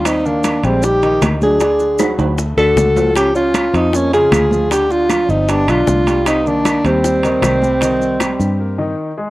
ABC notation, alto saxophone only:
X:1
M:4/4
L:1/8
Q:1/4=155
K:Cm
V:1 name="Alto saxophone"
E D2 C G2 z A- | A3 z2 =A3 | G F2 E _D A3 | G F2 E D F3 |
E D2 C4- C- | C6 z2 |]